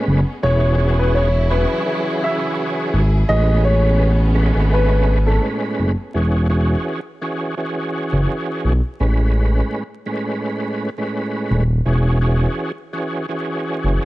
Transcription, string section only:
0, 0, Header, 1, 2, 480
1, 0, Start_track
1, 0, Key_signature, 4, "major"
1, 0, Tempo, 714286
1, 290, Time_signature, 4, 2, 24, 8
1, 9442, End_track
2, 0, Start_track
2, 0, Title_t, "String section"
2, 0, Program_c, 0, 48
2, 0, Note_on_c, 0, 47, 85
2, 0, Note_on_c, 0, 59, 74
2, 0, Note_on_c, 0, 61, 84
2, 0, Note_on_c, 0, 68, 69
2, 261, Note_off_c, 0, 68, 0
2, 265, Note_off_c, 0, 47, 0
2, 265, Note_off_c, 0, 59, 0
2, 265, Note_off_c, 0, 61, 0
2, 299, Note_on_c, 0, 49, 85
2, 299, Note_on_c, 0, 54, 79
2, 299, Note_on_c, 0, 64, 92
2, 299, Note_on_c, 0, 68, 78
2, 2195, Note_off_c, 0, 49, 0
2, 2195, Note_off_c, 0, 54, 0
2, 2195, Note_off_c, 0, 64, 0
2, 2209, Note_on_c, 0, 47, 82
2, 2209, Note_on_c, 0, 61, 87
2, 2210, Note_on_c, 0, 59, 85
2, 4107, Note_off_c, 0, 68, 0
2, 4110, Note_off_c, 0, 47, 0
2, 4110, Note_off_c, 0, 61, 0
2, 4111, Note_off_c, 0, 59, 0
2, 9442, End_track
0, 0, End_of_file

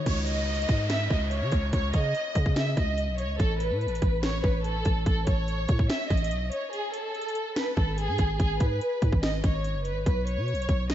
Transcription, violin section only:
0, 0, Header, 1, 2, 480
1, 0, Start_track
1, 0, Key_signature, 4, "minor"
1, 0, Tempo, 416667
1, 73, Time_signature, 4, 2, 24, 8
1, 12610, End_track
2, 0, Start_track
2, 0, Title_t, "Violin section"
2, 0, Program_c, 0, 48
2, 68, Note_on_c, 0, 73, 80
2, 259, Note_off_c, 0, 73, 0
2, 309, Note_on_c, 0, 75, 85
2, 987, Note_off_c, 0, 75, 0
2, 1031, Note_on_c, 0, 76, 95
2, 1221, Note_off_c, 0, 76, 0
2, 1277, Note_on_c, 0, 75, 79
2, 1464, Note_off_c, 0, 75, 0
2, 1511, Note_on_c, 0, 73, 87
2, 1963, Note_off_c, 0, 73, 0
2, 1998, Note_on_c, 0, 73, 94
2, 2185, Note_off_c, 0, 73, 0
2, 2232, Note_on_c, 0, 75, 90
2, 2909, Note_off_c, 0, 75, 0
2, 2959, Note_on_c, 0, 76, 83
2, 3146, Note_off_c, 0, 76, 0
2, 3193, Note_on_c, 0, 75, 75
2, 3644, Note_off_c, 0, 75, 0
2, 3668, Note_on_c, 0, 73, 82
2, 3859, Note_off_c, 0, 73, 0
2, 3911, Note_on_c, 0, 69, 97
2, 4101, Note_off_c, 0, 69, 0
2, 4151, Note_on_c, 0, 71, 85
2, 4829, Note_off_c, 0, 71, 0
2, 4874, Note_on_c, 0, 73, 95
2, 5063, Note_off_c, 0, 73, 0
2, 5113, Note_on_c, 0, 71, 79
2, 5302, Note_off_c, 0, 71, 0
2, 5354, Note_on_c, 0, 69, 94
2, 5804, Note_off_c, 0, 69, 0
2, 5842, Note_on_c, 0, 69, 94
2, 6027, Note_off_c, 0, 69, 0
2, 6070, Note_on_c, 0, 73, 82
2, 6748, Note_off_c, 0, 73, 0
2, 6798, Note_on_c, 0, 76, 85
2, 6985, Note_off_c, 0, 76, 0
2, 7029, Note_on_c, 0, 75, 74
2, 7482, Note_off_c, 0, 75, 0
2, 7514, Note_on_c, 0, 73, 79
2, 7702, Note_off_c, 0, 73, 0
2, 7750, Note_on_c, 0, 68, 95
2, 7940, Note_off_c, 0, 68, 0
2, 7994, Note_on_c, 0, 69, 88
2, 8670, Note_off_c, 0, 69, 0
2, 8712, Note_on_c, 0, 71, 85
2, 8901, Note_off_c, 0, 71, 0
2, 8950, Note_on_c, 0, 69, 78
2, 9140, Note_off_c, 0, 69, 0
2, 9197, Note_on_c, 0, 68, 95
2, 9646, Note_off_c, 0, 68, 0
2, 9672, Note_on_c, 0, 68, 96
2, 9862, Note_off_c, 0, 68, 0
2, 9911, Note_on_c, 0, 71, 84
2, 10588, Note_off_c, 0, 71, 0
2, 10633, Note_on_c, 0, 75, 89
2, 10822, Note_off_c, 0, 75, 0
2, 10879, Note_on_c, 0, 73, 71
2, 11327, Note_off_c, 0, 73, 0
2, 11346, Note_on_c, 0, 71, 85
2, 11538, Note_off_c, 0, 71, 0
2, 11596, Note_on_c, 0, 71, 84
2, 11784, Note_off_c, 0, 71, 0
2, 11834, Note_on_c, 0, 73, 80
2, 12510, Note_off_c, 0, 73, 0
2, 12558, Note_on_c, 0, 75, 91
2, 12610, Note_off_c, 0, 75, 0
2, 12610, End_track
0, 0, End_of_file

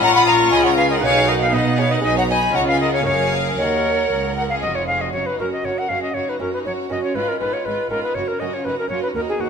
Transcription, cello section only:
0, 0, Header, 1, 2, 480
1, 0, Start_track
1, 0, Key_signature, 6, "major"
1, 0, Tempo, 503356
1, 982, Time_signature, 4, 2, 24, 8
1, 2426, Tempo, 519031
1, 4826, Tempo, 500835
1, 9001, End_track
2, 0, Start_track
2, 0, Title_t, "Cello section"
2, 0, Program_c, 0, 48
2, 18, Note_on_c, 0, 46, 94
2, 495, Note_on_c, 0, 49, 90
2, 498, Note_off_c, 0, 46, 0
2, 969, Note_off_c, 0, 49, 0
2, 972, Note_on_c, 0, 47, 88
2, 1456, Note_off_c, 0, 47, 0
2, 1458, Note_on_c, 0, 59, 85
2, 1939, Note_on_c, 0, 47, 80
2, 1940, Note_off_c, 0, 59, 0
2, 2415, Note_off_c, 0, 47, 0
2, 2424, Note_on_c, 0, 49, 77
2, 2895, Note_off_c, 0, 49, 0
2, 2902, Note_on_c, 0, 42, 77
2, 3384, Note_on_c, 0, 39, 73
2, 3387, Note_off_c, 0, 42, 0
2, 3859, Note_off_c, 0, 39, 0
2, 3865, Note_on_c, 0, 37, 77
2, 4337, Note_off_c, 0, 37, 0
2, 4348, Note_on_c, 0, 41, 72
2, 4822, Note_on_c, 0, 42, 47
2, 4826, Note_off_c, 0, 41, 0
2, 4899, Note_off_c, 0, 42, 0
2, 5068, Note_on_c, 0, 42, 40
2, 5144, Note_off_c, 0, 42, 0
2, 5304, Note_on_c, 0, 42, 46
2, 5381, Note_off_c, 0, 42, 0
2, 5549, Note_on_c, 0, 42, 49
2, 5625, Note_off_c, 0, 42, 0
2, 5784, Note_on_c, 0, 42, 44
2, 5860, Note_off_c, 0, 42, 0
2, 6034, Note_on_c, 0, 42, 41
2, 6111, Note_off_c, 0, 42, 0
2, 6276, Note_on_c, 0, 42, 44
2, 6352, Note_off_c, 0, 42, 0
2, 6510, Note_on_c, 0, 42, 43
2, 6587, Note_off_c, 0, 42, 0
2, 6753, Note_on_c, 0, 44, 48
2, 6830, Note_off_c, 0, 44, 0
2, 6996, Note_on_c, 0, 44, 43
2, 7073, Note_off_c, 0, 44, 0
2, 7240, Note_on_c, 0, 44, 45
2, 7316, Note_off_c, 0, 44, 0
2, 7476, Note_on_c, 0, 44, 49
2, 7553, Note_off_c, 0, 44, 0
2, 7720, Note_on_c, 0, 42, 47
2, 7797, Note_off_c, 0, 42, 0
2, 7952, Note_on_c, 0, 42, 46
2, 8029, Note_off_c, 0, 42, 0
2, 8190, Note_on_c, 0, 42, 43
2, 8267, Note_off_c, 0, 42, 0
2, 8429, Note_on_c, 0, 42, 48
2, 8506, Note_off_c, 0, 42, 0
2, 8665, Note_on_c, 0, 39, 48
2, 8741, Note_off_c, 0, 39, 0
2, 8902, Note_on_c, 0, 39, 41
2, 8979, Note_off_c, 0, 39, 0
2, 9001, End_track
0, 0, End_of_file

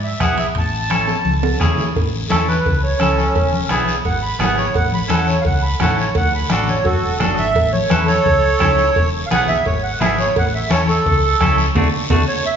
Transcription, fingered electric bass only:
0, 0, Header, 1, 2, 480
1, 0, Start_track
1, 0, Key_signature, 3, "major"
1, 0, Tempo, 349854
1, 763, Time_signature, 4, 2, 24, 8
1, 17238, End_track
2, 0, Start_track
2, 0, Title_t, "Fingered electric bass"
2, 0, Program_c, 0, 33
2, 0, Note_on_c, 0, 44, 90
2, 189, Note_off_c, 0, 44, 0
2, 280, Note_on_c, 0, 35, 84
2, 666, Note_off_c, 0, 35, 0
2, 761, Note_on_c, 0, 33, 100
2, 1531, Note_off_c, 0, 33, 0
2, 1718, Note_on_c, 0, 37, 88
2, 2105, Note_off_c, 0, 37, 0
2, 2201, Note_on_c, 0, 40, 80
2, 2587, Note_off_c, 0, 40, 0
2, 2689, Note_on_c, 0, 33, 98
2, 3072, Note_off_c, 0, 33, 0
2, 3172, Note_on_c, 0, 40, 94
2, 3553, Note_off_c, 0, 40, 0
2, 3647, Note_on_c, 0, 37, 89
2, 4030, Note_off_c, 0, 37, 0
2, 4115, Note_on_c, 0, 37, 83
2, 4503, Note_off_c, 0, 37, 0
2, 4598, Note_on_c, 0, 28, 99
2, 4985, Note_off_c, 0, 28, 0
2, 5072, Note_on_c, 0, 35, 101
2, 5461, Note_off_c, 0, 35, 0
2, 5557, Note_on_c, 0, 32, 97
2, 5944, Note_off_c, 0, 32, 0
2, 6023, Note_on_c, 0, 32, 88
2, 6416, Note_off_c, 0, 32, 0
2, 6516, Note_on_c, 0, 33, 105
2, 6904, Note_off_c, 0, 33, 0
2, 6990, Note_on_c, 0, 40, 102
2, 7381, Note_off_c, 0, 40, 0
2, 7475, Note_on_c, 0, 37, 94
2, 7863, Note_off_c, 0, 37, 0
2, 7952, Note_on_c, 0, 33, 85
2, 8342, Note_off_c, 0, 33, 0
2, 8440, Note_on_c, 0, 38, 100
2, 8827, Note_off_c, 0, 38, 0
2, 8931, Note_on_c, 0, 33, 96
2, 9313, Note_off_c, 0, 33, 0
2, 9399, Note_on_c, 0, 42, 91
2, 9594, Note_off_c, 0, 42, 0
2, 9646, Note_on_c, 0, 28, 80
2, 9862, Note_off_c, 0, 28, 0
2, 9896, Note_on_c, 0, 30, 76
2, 10108, Note_off_c, 0, 30, 0
2, 10128, Note_on_c, 0, 32, 89
2, 10343, Note_off_c, 0, 32, 0
2, 10360, Note_on_c, 0, 33, 97
2, 10747, Note_off_c, 0, 33, 0
2, 10843, Note_on_c, 0, 40, 93
2, 11229, Note_off_c, 0, 40, 0
2, 11328, Note_on_c, 0, 37, 91
2, 11711, Note_off_c, 0, 37, 0
2, 11808, Note_on_c, 0, 37, 86
2, 12191, Note_off_c, 0, 37, 0
2, 12290, Note_on_c, 0, 28, 104
2, 12673, Note_off_c, 0, 28, 0
2, 12769, Note_on_c, 0, 35, 102
2, 13152, Note_off_c, 0, 35, 0
2, 13256, Note_on_c, 0, 32, 91
2, 13636, Note_off_c, 0, 32, 0
2, 13739, Note_on_c, 0, 32, 88
2, 14117, Note_off_c, 0, 32, 0
2, 14221, Note_on_c, 0, 33, 107
2, 14598, Note_off_c, 0, 33, 0
2, 14686, Note_on_c, 0, 40, 102
2, 15069, Note_off_c, 0, 40, 0
2, 15172, Note_on_c, 0, 37, 97
2, 15553, Note_off_c, 0, 37, 0
2, 15645, Note_on_c, 0, 37, 93
2, 16029, Note_off_c, 0, 37, 0
2, 16122, Note_on_c, 0, 38, 93
2, 16301, Note_off_c, 0, 38, 0
2, 16596, Note_on_c, 0, 38, 96
2, 16778, Note_off_c, 0, 38, 0
2, 17238, End_track
0, 0, End_of_file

